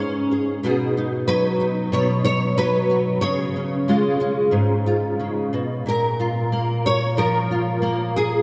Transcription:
0, 0, Header, 1, 2, 480
1, 0, Start_track
1, 0, Tempo, 647948
1, 465, Time_signature, 4, 2, 24, 8
1, 2868, Tempo, 657895
1, 6189, End_track
2, 0, Start_track
2, 0, Title_t, "Nylon-string guitar"
2, 0, Program_c, 0, 24
2, 0, Note_on_c, 0, 44, 58
2, 0, Note_on_c, 0, 61, 55
2, 0, Note_on_c, 0, 65, 38
2, 0, Note_on_c, 0, 68, 44
2, 0, Note_on_c, 0, 71, 71
2, 229, Note_off_c, 0, 68, 0
2, 232, Note_on_c, 0, 68, 41
2, 436, Note_off_c, 0, 61, 0
2, 438, Note_off_c, 0, 65, 0
2, 465, Note_off_c, 0, 44, 0
2, 468, Note_off_c, 0, 71, 0
2, 468, Note_on_c, 0, 47, 68
2, 475, Note_on_c, 0, 63, 46
2, 480, Note_on_c, 0, 66, 43
2, 483, Note_off_c, 0, 68, 0
2, 486, Note_on_c, 0, 68, 43
2, 710, Note_off_c, 0, 63, 0
2, 720, Note_on_c, 0, 63, 44
2, 942, Note_off_c, 0, 68, 0
2, 944, Note_on_c, 0, 54, 60
2, 945, Note_on_c, 0, 71, 94
2, 1176, Note_off_c, 0, 63, 0
2, 1185, Note_on_c, 0, 63, 43
2, 1413, Note_off_c, 0, 47, 0
2, 1422, Note_on_c, 0, 47, 64
2, 1424, Note_off_c, 0, 71, 0
2, 1432, Note_on_c, 0, 73, 93
2, 1654, Note_off_c, 0, 73, 0
2, 1663, Note_on_c, 0, 73, 95
2, 1895, Note_off_c, 0, 54, 0
2, 1903, Note_on_c, 0, 54, 56
2, 1905, Note_off_c, 0, 73, 0
2, 1909, Note_on_c, 0, 71, 97
2, 2138, Note_off_c, 0, 66, 0
2, 2147, Note_on_c, 0, 66, 43
2, 2357, Note_off_c, 0, 47, 0
2, 2358, Note_off_c, 0, 63, 0
2, 2358, Note_off_c, 0, 66, 0
2, 2376, Note_off_c, 0, 71, 0
2, 2379, Note_on_c, 0, 49, 61
2, 2379, Note_on_c, 0, 73, 93
2, 2385, Note_off_c, 0, 54, 0
2, 2635, Note_on_c, 0, 61, 37
2, 2875, Note_on_c, 0, 56, 58
2, 2879, Note_on_c, 0, 65, 44
2, 3099, Note_off_c, 0, 61, 0
2, 3108, Note_on_c, 0, 61, 47
2, 3336, Note_on_c, 0, 44, 57
2, 3344, Note_off_c, 0, 49, 0
2, 3582, Note_off_c, 0, 65, 0
2, 3591, Note_on_c, 0, 65, 45
2, 3833, Note_on_c, 0, 49, 54
2, 4070, Note_off_c, 0, 44, 0
2, 4076, Note_off_c, 0, 49, 0
2, 4077, Note_on_c, 0, 47, 53
2, 4288, Note_off_c, 0, 61, 0
2, 4289, Note_off_c, 0, 65, 0
2, 4291, Note_off_c, 0, 56, 0
2, 4312, Note_off_c, 0, 73, 0
2, 4314, Note_off_c, 0, 47, 0
2, 4317, Note_on_c, 0, 46, 62
2, 4336, Note_on_c, 0, 70, 86
2, 4564, Note_on_c, 0, 65, 42
2, 4801, Note_on_c, 0, 58, 55
2, 5044, Note_off_c, 0, 70, 0
2, 5047, Note_on_c, 0, 73, 94
2, 5275, Note_on_c, 0, 53, 58
2, 5278, Note_off_c, 0, 73, 0
2, 5281, Note_on_c, 0, 70, 86
2, 5514, Note_off_c, 0, 65, 0
2, 5523, Note_on_c, 0, 65, 44
2, 5744, Note_off_c, 0, 58, 0
2, 5747, Note_on_c, 0, 58, 61
2, 5993, Note_off_c, 0, 70, 0
2, 5999, Note_on_c, 0, 68, 81
2, 6189, Note_off_c, 0, 46, 0
2, 6189, Note_off_c, 0, 53, 0
2, 6189, Note_off_c, 0, 58, 0
2, 6189, Note_off_c, 0, 65, 0
2, 6189, Note_off_c, 0, 68, 0
2, 6189, End_track
0, 0, End_of_file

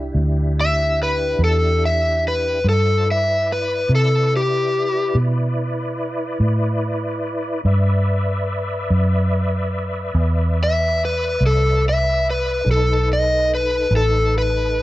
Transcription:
0, 0, Header, 1, 4, 480
1, 0, Start_track
1, 0, Tempo, 834492
1, 1521, Time_signature, 12, 3, 24, 8
1, 8526, End_track
2, 0, Start_track
2, 0, Title_t, "Electric slide guitar"
2, 0, Program_c, 0, 29
2, 349, Note_on_c, 0, 76, 92
2, 568, Note_off_c, 0, 76, 0
2, 591, Note_on_c, 0, 71, 77
2, 809, Note_off_c, 0, 71, 0
2, 830, Note_on_c, 0, 69, 80
2, 1049, Note_off_c, 0, 69, 0
2, 1067, Note_on_c, 0, 76, 77
2, 1287, Note_off_c, 0, 76, 0
2, 1311, Note_on_c, 0, 71, 90
2, 1530, Note_off_c, 0, 71, 0
2, 1548, Note_on_c, 0, 69, 91
2, 1768, Note_off_c, 0, 69, 0
2, 1792, Note_on_c, 0, 76, 72
2, 2010, Note_off_c, 0, 76, 0
2, 2027, Note_on_c, 0, 71, 71
2, 2247, Note_off_c, 0, 71, 0
2, 2273, Note_on_c, 0, 69, 83
2, 2491, Note_off_c, 0, 69, 0
2, 2511, Note_on_c, 0, 67, 93
2, 2962, Note_off_c, 0, 67, 0
2, 6117, Note_on_c, 0, 76, 107
2, 6332, Note_off_c, 0, 76, 0
2, 6356, Note_on_c, 0, 71, 80
2, 6571, Note_off_c, 0, 71, 0
2, 6594, Note_on_c, 0, 69, 82
2, 6810, Note_off_c, 0, 69, 0
2, 6841, Note_on_c, 0, 76, 96
2, 7054, Note_off_c, 0, 76, 0
2, 7077, Note_on_c, 0, 71, 90
2, 7292, Note_off_c, 0, 71, 0
2, 7312, Note_on_c, 0, 69, 85
2, 7529, Note_off_c, 0, 69, 0
2, 7553, Note_on_c, 0, 75, 88
2, 7769, Note_off_c, 0, 75, 0
2, 7792, Note_on_c, 0, 71, 88
2, 8008, Note_off_c, 0, 71, 0
2, 8032, Note_on_c, 0, 69, 87
2, 8248, Note_off_c, 0, 69, 0
2, 8273, Note_on_c, 0, 71, 88
2, 8526, Note_off_c, 0, 71, 0
2, 8526, End_track
3, 0, Start_track
3, 0, Title_t, "Tonewheel organ"
3, 0, Program_c, 1, 16
3, 0, Note_on_c, 1, 62, 68
3, 0, Note_on_c, 1, 64, 66
3, 0, Note_on_c, 1, 67, 66
3, 1494, Note_off_c, 1, 64, 0
3, 1494, Note_off_c, 1, 67, 0
3, 1496, Note_off_c, 1, 62, 0
3, 1517, Note_on_c, 1, 72, 59
3, 1519, Note_on_c, 1, 65, 60
3, 1520, Note_on_c, 1, 75, 59
3, 1759, Note_off_c, 1, 72, 0
3, 1760, Note_off_c, 1, 65, 0
3, 1760, Note_on_c, 1, 64, 67
3, 1761, Note_off_c, 1, 75, 0
3, 1761, Note_on_c, 1, 74, 62
3, 1765, Note_on_c, 1, 71, 62
3, 4378, Note_off_c, 1, 64, 0
3, 4378, Note_off_c, 1, 74, 0
3, 4380, Note_off_c, 1, 71, 0
3, 4400, Note_on_c, 1, 74, 62
3, 4402, Note_on_c, 1, 71, 63
3, 4404, Note_on_c, 1, 76, 69
3, 7256, Note_off_c, 1, 74, 0
3, 7257, Note_off_c, 1, 71, 0
3, 7258, Note_off_c, 1, 76, 0
3, 7272, Note_on_c, 1, 71, 69
3, 7273, Note_on_c, 1, 63, 66
3, 7274, Note_on_c, 1, 69, 72
3, 8526, Note_off_c, 1, 63, 0
3, 8526, Note_off_c, 1, 69, 0
3, 8526, Note_off_c, 1, 71, 0
3, 8526, End_track
4, 0, Start_track
4, 0, Title_t, "Fingered electric bass"
4, 0, Program_c, 2, 33
4, 0, Note_on_c, 2, 36, 73
4, 60, Note_off_c, 2, 36, 0
4, 84, Note_on_c, 2, 38, 84
4, 781, Note_off_c, 2, 38, 0
4, 798, Note_on_c, 2, 40, 83
4, 1498, Note_off_c, 2, 40, 0
4, 1521, Note_on_c, 2, 43, 77
4, 2220, Note_off_c, 2, 43, 0
4, 2239, Note_on_c, 2, 48, 83
4, 2939, Note_off_c, 2, 48, 0
4, 2961, Note_on_c, 2, 47, 85
4, 3660, Note_off_c, 2, 47, 0
4, 3681, Note_on_c, 2, 45, 86
4, 4379, Note_off_c, 2, 45, 0
4, 4399, Note_on_c, 2, 43, 88
4, 5099, Note_off_c, 2, 43, 0
4, 5122, Note_on_c, 2, 42, 76
4, 5820, Note_off_c, 2, 42, 0
4, 5836, Note_on_c, 2, 40, 85
4, 6536, Note_off_c, 2, 40, 0
4, 6561, Note_on_c, 2, 36, 88
4, 7258, Note_off_c, 2, 36, 0
4, 7283, Note_on_c, 2, 35, 85
4, 7979, Note_off_c, 2, 35, 0
4, 7999, Note_on_c, 2, 33, 91
4, 8526, Note_off_c, 2, 33, 0
4, 8526, End_track
0, 0, End_of_file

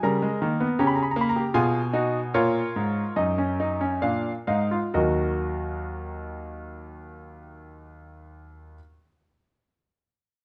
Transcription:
0, 0, Header, 1, 2, 480
1, 0, Start_track
1, 0, Key_signature, -6, "minor"
1, 0, Tempo, 766284
1, 38, Time_signature, 3, 2, 24, 8
1, 1479, Tempo, 843882
1, 2439, Tempo, 938967
1, 5709, End_track
2, 0, Start_track
2, 0, Title_t, "Grand piano"
2, 0, Program_c, 0, 0
2, 19, Note_on_c, 0, 70, 70
2, 20, Note_on_c, 0, 49, 69
2, 21, Note_on_c, 0, 55, 75
2, 24, Note_on_c, 0, 82, 71
2, 138, Note_on_c, 0, 56, 71
2, 141, Note_off_c, 0, 55, 0
2, 170, Note_off_c, 0, 49, 0
2, 258, Note_off_c, 0, 56, 0
2, 261, Note_on_c, 0, 51, 74
2, 264, Note_on_c, 0, 58, 72
2, 378, Note_on_c, 0, 59, 70
2, 380, Note_off_c, 0, 58, 0
2, 409, Note_off_c, 0, 51, 0
2, 481, Note_off_c, 0, 70, 0
2, 484, Note_off_c, 0, 82, 0
2, 495, Note_on_c, 0, 67, 73
2, 495, Note_on_c, 0, 82, 55
2, 496, Note_on_c, 0, 49, 64
2, 497, Note_off_c, 0, 59, 0
2, 497, Note_on_c, 0, 61, 77
2, 546, Note_on_c, 0, 83, 62
2, 552, Note_off_c, 0, 82, 0
2, 598, Note_on_c, 0, 82, 62
2, 604, Note_off_c, 0, 83, 0
2, 610, Note_on_c, 0, 68, 58
2, 615, Note_off_c, 0, 67, 0
2, 643, Note_on_c, 0, 83, 53
2, 647, Note_off_c, 0, 61, 0
2, 656, Note_off_c, 0, 82, 0
2, 697, Note_on_c, 0, 82, 60
2, 704, Note_off_c, 0, 83, 0
2, 728, Note_on_c, 0, 58, 84
2, 729, Note_on_c, 0, 70, 70
2, 732, Note_off_c, 0, 68, 0
2, 758, Note_off_c, 0, 82, 0
2, 759, Note_on_c, 0, 83, 61
2, 810, Note_on_c, 0, 82, 70
2, 815, Note_off_c, 0, 83, 0
2, 852, Note_off_c, 0, 70, 0
2, 853, Note_on_c, 0, 67, 65
2, 881, Note_off_c, 0, 58, 0
2, 964, Note_off_c, 0, 49, 0
2, 966, Note_on_c, 0, 65, 83
2, 967, Note_on_c, 0, 47, 78
2, 967, Note_on_c, 0, 80, 83
2, 970, Note_on_c, 0, 68, 73
2, 974, Note_off_c, 0, 82, 0
2, 975, Note_off_c, 0, 67, 0
2, 1123, Note_off_c, 0, 65, 0
2, 1126, Note_off_c, 0, 68, 0
2, 1211, Note_on_c, 0, 63, 81
2, 1214, Note_on_c, 0, 66, 71
2, 1371, Note_off_c, 0, 63, 0
2, 1373, Note_off_c, 0, 66, 0
2, 1455, Note_off_c, 0, 47, 0
2, 1455, Note_off_c, 0, 80, 0
2, 1467, Note_on_c, 0, 46, 75
2, 1468, Note_on_c, 0, 65, 82
2, 1469, Note_on_c, 0, 73, 78
2, 1470, Note_on_c, 0, 70, 79
2, 1615, Note_off_c, 0, 46, 0
2, 1706, Note_on_c, 0, 44, 73
2, 1854, Note_off_c, 0, 44, 0
2, 1928, Note_off_c, 0, 65, 0
2, 1929, Note_off_c, 0, 73, 0
2, 1935, Note_on_c, 0, 75, 69
2, 1936, Note_on_c, 0, 42, 67
2, 1936, Note_on_c, 0, 63, 70
2, 2058, Note_off_c, 0, 63, 0
2, 2059, Note_on_c, 0, 61, 63
2, 2182, Note_off_c, 0, 61, 0
2, 2183, Note_on_c, 0, 63, 75
2, 2302, Note_on_c, 0, 61, 66
2, 2306, Note_off_c, 0, 63, 0
2, 2417, Note_off_c, 0, 75, 0
2, 2418, Note_off_c, 0, 42, 0
2, 2422, Note_on_c, 0, 46, 70
2, 2422, Note_on_c, 0, 62, 67
2, 2423, Note_on_c, 0, 77, 74
2, 2429, Note_off_c, 0, 61, 0
2, 2571, Note_off_c, 0, 46, 0
2, 2571, Note_off_c, 0, 62, 0
2, 2572, Note_off_c, 0, 77, 0
2, 2656, Note_on_c, 0, 77, 66
2, 2657, Note_on_c, 0, 44, 68
2, 2658, Note_on_c, 0, 63, 73
2, 2777, Note_off_c, 0, 63, 0
2, 2778, Note_on_c, 0, 65, 64
2, 2807, Note_off_c, 0, 44, 0
2, 2807, Note_off_c, 0, 77, 0
2, 2882, Note_off_c, 0, 70, 0
2, 2894, Note_on_c, 0, 66, 62
2, 2896, Note_on_c, 0, 39, 59
2, 2896, Note_on_c, 0, 70, 58
2, 2896, Note_on_c, 0, 75, 56
2, 2898, Note_off_c, 0, 65, 0
2, 2909, Note_on_c, 0, 54, 55
2, 2912, Note_on_c, 0, 51, 54
2, 4843, Note_off_c, 0, 66, 0
2, 4845, Note_off_c, 0, 39, 0
2, 4845, Note_off_c, 0, 70, 0
2, 4845, Note_off_c, 0, 75, 0
2, 4858, Note_off_c, 0, 54, 0
2, 4861, Note_off_c, 0, 51, 0
2, 5709, End_track
0, 0, End_of_file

